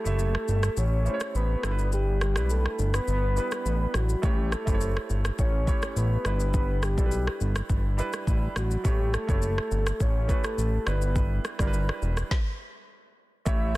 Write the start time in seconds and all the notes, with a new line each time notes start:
Already playing: A3 E4 G4 A4 C#5
0.04 F#1 A3 E4 G4 E5, shaker
0.19 shaker
0.35 cross-stick
0.48 G1, shaker
0.63 cross-stick, shaker
0.77 A1 C#5, shaker
1.05 A3 E4 G4 C5, shaker
1.14 C#5
1.20 cross-stick, shaker
1.35 A1 B4, shaker
1.62 G1 G3 D4 E4 A4, cross-stick, shaker
1.71 B4
1.79 shaker
1.92 G4, shaker
2.21 cross-stick, shaker
2.35 B1 G3 D4 E4 B4, cross-stick, shaker
2.50 A4, shaker
2.66 cross-stick
2.79 G1, shaker
2.94 B4, cross-stick, shaker
3.08 G1, shaker
3.35 G3 D4 E4 B4, shaker
3.51 cross-stick, shaker
3.66 A1, shaker
3.94 A1 F#4, cross-stick, shaker
4.09 shaker
4.22 A1 A3 E4 G4 C#5, kick, shaker
4.52 A4, cross-stick, shaker
4.65 F#1 A3 E4 G4 C5, kick, shaker
4.74 C#5
4.81 shaker
4.97 cross-stick
5.10 G1, shaker
5.25 cross-stick, shaker
5.39 A1 C#5, kick, shaker
5.66 A3 E4 G4 C#5, kick, shaker
5.82 cross-stick, shaker
5.96 A1 B4, shaker
6.24 G1 G3 D4 E4 B4, cross-stick, shaker
6.40 shaker
6.54 B4, kick, shaker
6.83 G4, cross-stick, shaker
6.97 B1 G3 D4 E4 A4, kick, shaker
7.06 B4
7.11 shaker
7.27 cross-stick
7.41 G1, shaker
7.56 cross-stick, shaker
7.70 G1, kick, shaker
7.97 G3 D4 E4 B4, shaker
8.13 cross-stick, shaker
8.27 A1, kick, shaker
8.56 A1 F#4, cross-stick, shaker
8.71 shaker
8.84 A1 A3 E4 G4 C#5, kick, shaker
9.14 A4, cross-stick, shaker
9.27 F#1 A3 E4 G4 C#5, kick, shaker
9.42 shaker
9.58 cross-stick
9.71 G1, shaker
9.87 cross-stick, shaker
10.00 A1 C#5, kick, shaker
10.28 A3 E4 G4 B4, kick, shaker
10.44 A4, cross-stick, shaker
10.58 A1, shaker
10.86 G1 G3 D4 E4 B4, cross-stick, shaker
11.02 shaker
11.16 kick, shaker
11.45 cross-stick, shaker
11.58 G1 G3 D4 E4 A#4, kick, cross-stick, shaker
11.67 B4
11.73 shaker
11.89 cross-stick
12.02 E1, shaker
12.17 cross-stick, shaker
12.31 kick, snare
13.45 A1 A3 C#4 E4 G4 C#5 E5, kick, shaker